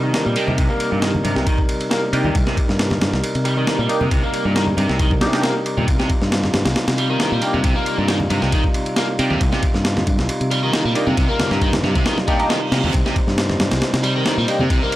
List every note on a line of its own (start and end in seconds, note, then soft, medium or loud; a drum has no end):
0.00 0.10 C3 medium
0.00 14.96 C3 medium
0.00 0.12 D#3 medium
0.00 14.96 G3 medium
0.00 14.96 D#4 medium
0.00 5.86 A#4 medium
0.13 0.24 D#3 medium
0.13 snare loud
0.13 ride medium
0.26 0.34 A#2 medium
0.26 0.34 G3 medium
0.36 0.52 A#3 medium
0.36 0.52 D4 medium
0.36 0.52 D#4 medium
0.36 0.52 G4 loud
0.36 ride medium
0.47 0.56 C3 medium
0.47 high conga medium
0.47 low conga medium
0.58 0.67 C2 medium
0.58 0.69 C3 medium
0.58 kick loud
0.58 ride medium
0.69 0.91 A#3 medium
0.80 ride medium
0.91 1.21 G2 medium
0.91 1.00 A#2 medium
1.02 1.12 D#3 medium
1.02 snare loud
1.02 ride medium
1.15 low conga medium
1.24 1.34 G2 medium
1.24 1.34 C3 medium
1.24 ride medium
1.24 high conga medium
1.36 1.44 C2 medium
1.36 1.46 C3 medium
1.36 snare soft
1.46 1.58 D#3 medium
1.46 kick loud
1.46 ride medium
1.58 kick medium
1.69 ride medium
1.81 ride soft
1.91 2.00 A#3 medium
1.91 snare loud
1.91 ride medium
2.13 2.22 C3 medium
2.13 2.28 A#3 medium
2.13 2.28 D4 medium
2.13 2.28 D#4 medium
2.13 2.28 G4 loud
2.13 ride medium
2.24 2.32 D#2 medium
2.24 2.34 C3 medium
2.24 high conga medium
2.24 low conga medium
2.35 2.44 C2 medium
2.35 kick loud
2.35 ride medium
2.47 2.57 C3 medium
2.47 snare soft
2.57 kick medium
2.57 ride medium
2.69 2.97 G2 medium
2.69 snare soft
2.79 snare loud
2.79 ride medium
2.90 snare medium
2.90 low conga medium
3.01 3.10 G2 loud
3.01 snare loud
3.01 ride medium
3.01 high conga medium
3.13 3.21 C2 medium
3.13 snare medium
3.24 ride medium
3.35 3.63 C3 medium
3.35 ride soft
3.45 3.55 G3 medium
3.45 ride medium
3.57 3.66 D#3 medium
3.67 3.77 D#3 loud
3.67 snare loud
3.67 ride medium
3.79 3.87 A#2 medium
3.79 3.88 G3 medium
3.89 4.04 A#3 medium
3.89 4.04 D4 medium
3.89 4.04 D#4 medium
3.89 4.04 G4 loud
3.89 ride medium
4.01 4.10 C3 medium
4.01 4.09 C3 medium
4.01 high conga medium
4.01 low conga medium
4.11 4.20 C2 medium
4.11 4.23 C3 medium
4.11 kick loud
4.11 ride medium
4.23 4.44 A#3 medium
4.34 ride medium
4.45 4.74 G2 loud
4.45 4.54 A#2 medium
4.56 4.65 D#3 medium
4.56 snare loud
4.56 ride medium
4.67 low conga medium
4.77 4.86 G2 medium
4.77 4.88 C3 medium
4.77 ride medium
4.77 high conga medium
4.89 5.23 C2 medium
4.89 4.99 C3 medium
4.89 snare soft
4.99 5.11 D#3 medium
4.99 kick loud
4.99 ride medium
5.11 kick medium
5.11 high conga medium
5.21 5.51 C3 medium
5.21 5.31 A#3 medium
5.21 5.31 D4 medium
5.21 5.32 D#4 medium
5.21 5.32 G4 medium
5.21 snare loud
5.21 ride medium
5.33 5.42 A#3 medium
5.33 5.42 D4 medium
5.33 5.42 D#4 medium
5.33 5.42 G4 loud
5.33 snare loud
5.33 ride medium
5.43 5.53 A#3 medium
5.43 snare loud
5.43 ride medium
5.66 ride medium
5.77 5.85 A#2 loud
5.77 5.87 C3 medium
5.77 high conga medium
5.77 low conga medium
5.88 5.97 C2 medium
5.88 12.92 F4 medium
5.88 kick loud
5.88 ride medium
5.99 6.09 C3 medium
5.99 snare medium
6.10 kick medium
6.10 ride medium
6.21 6.50 G2 medium
6.21 snare soft
6.32 snare loud
6.32 ride medium
6.44 snare medium
6.44 low conga medium
6.54 6.63 G2 medium
6.54 snare loud
6.54 ride medium
6.54 high conga medium
6.65 6.73 C2 medium
6.65 snare loud
6.65 ride medium
6.76 snare loud
6.76 ride medium
6.88 7.16 C3 medium
6.88 snare loud
6.88 ride medium
6.98 7.08 G3 medium
6.98 ride medium
7.09 7.18 D#3 medium
7.20 7.30 D#3 loud
7.20 snare loud
7.20 ride medium
7.32 7.40 A#2 medium
7.32 7.40 G3 medium
7.42 7.57 A#3 medium
7.42 7.57 D4 medium
7.42 7.57 D#4 medium
7.42 7.58 G4 loud
7.42 ride medium
7.54 7.63 C3 medium
7.54 7.62 C3 medium
7.54 high conga medium
7.54 low conga medium
7.64 7.73 C2 medium
7.64 7.75 C3 medium
7.64 kick loud
7.64 ride medium
7.76 7.97 A#3 loud
7.86 ride medium
7.98 8.27 G2 loud
7.98 8.07 A#2 medium
8.08 8.18 D#3 medium
8.08 snare loud
8.08 ride medium
8.20 low conga medium
8.30 8.39 G2 loud
8.30 8.41 C3 medium
8.30 ride medium
8.30 high conga medium
8.42 8.50 C2 medium
8.42 8.52 C3 medium
8.42 snare soft
8.52 8.64 D#3 medium
8.52 kick loud
8.52 ride medium
8.64 kick medium
8.74 ride medium
8.86 ride soft
8.96 9.06 A#3 medium
8.96 snare loud
8.96 ride medium
9.19 9.28 C3 loud
9.19 9.34 A#3 medium
9.19 9.34 D4 medium
9.19 9.34 D#4 medium
9.19 9.34 G4 loud
9.19 ride medium
9.30 9.38 D#2 medium
9.30 9.40 C3 medium
9.30 high conga medium
9.30 low conga medium
9.41 9.50 C2 medium
9.41 kick loud
9.41 ride medium
9.52 9.62 C3 medium
9.52 snare soft
9.63 kick medium
9.63 ride medium
9.74 10.03 G2 medium
9.74 snare soft
9.85 snare loud
9.85 ride medium
9.97 snare medium
9.97 low conga medium
10.07 10.16 G2 medium
10.07 kick medium
10.07 ride medium
10.07 high conga medium
10.19 10.27 C2 medium
10.19 snare medium
10.29 muted fingered electric bass stroke soft
10.29 ride medium
10.41 10.69 C3 medium
10.41 ride soft
10.51 10.61 G3 loud
10.51 ride medium
10.63 10.71 D#3 loud
10.73 10.83 D#3 medium
10.73 snare loud
10.73 ride medium
10.85 10.93 A#2 medium
10.85 10.94 G3 medium
10.95 11.10 A#3 medium
10.95 11.10 D4 medium
10.95 11.10 D#4 medium
10.95 11.10 G4 loud
10.95 ride medium
11.07 11.16 C3 medium
11.07 11.15 C3 medium
11.07 high conga medium
11.07 low conga medium
11.17 11.26 C2 medium
11.17 11.28 C3 medium
11.17 kick loud
11.17 ride medium
11.28 11.50 A#3 loud
11.40 snare loud
11.40 ride medium
11.40 low conga medium
11.51 11.79 G2 medium
11.51 11.60 A#2 medium
11.51 snare soft
11.62 11.71 D#3 medium
11.62 kick medium
11.62 ride medium
11.73 snare loud
11.73 ride medium
11.73 low conga medium
11.83 11.92 G2 loud
11.83 11.94 C3 medium
11.83 snare soft
11.83 high conga medium
11.95 12.03 C2 medium
11.95 12.05 C3 medium
11.95 kick medium
11.95 ride medium
12.06 12.17 D#3 medium
12.06 snare loud
12.06 ride medium
12.06 reverse cymbal medium
12.18 snare soft
12.18 high conga medium
12.27 12.39 A#2 medium
12.27 12.37 A#3 medium
12.27 12.37 D4 medium
12.27 12.37 D#4 medium
12.27 12.37 G4 medium
12.27 kick medium
12.27 ride medium
12.39 12.48 A#3 medium
12.39 12.48 D4 medium
12.39 12.48 D#4 medium
12.39 12.48 G4 loud
12.39 ride soft
12.49 12.59 D#3 loud
12.49 snare loud
12.49 ride medium
12.72 12.78 A#2 medium
12.72 12.81 C3 loud
12.72 snare loud
12.72 ride medium
12.83 12.91 D#2 medium
12.83 12.93 C3 loud
12.83 high conga medium
12.83 low conga medium
12.93 13.03 C2 medium
12.93 14.96 C5 medium
12.93 kick loud
12.93 ride medium
13.06 13.16 C3 medium
13.06 snare medium
13.16 kick medium
13.16 ride medium
13.27 13.56 G2 loud
13.27 snare soft
13.38 snare loud
13.38 ride medium
13.49 snare medium
13.49 low conga medium
13.60 13.69 G2 medium
13.60 snare loud
13.60 ride medium
13.60 high conga medium
13.71 13.80 C2 medium
13.71 snare loud
13.71 ride medium
13.82 snare loud
13.82 ride medium
13.93 14.22 C3 medium
13.93 snare loud
13.93 ride medium
14.04 14.13 G3 loud
14.04 ride medium
14.16 14.24 D#3 medium
14.26 14.36 D#3 loud
14.26 snare loud
14.26 ride medium
14.38 14.46 A#2 medium
14.38 14.46 G3 medium
14.48 14.63 A#3 medium
14.48 14.63 D4 medium
14.48 14.63 D#4 medium
14.48 14.63 G4 loud
14.48 ride medium
14.59 14.68 C3 medium
14.59 14.69 C3 medium
14.59 high conga medium
14.59 low conga medium
14.70 14.79 C2 medium
14.70 14.82 C3 medium
14.70 kick loud
14.70 ride medium
14.83 14.96 A#3 loud
14.92 ride medium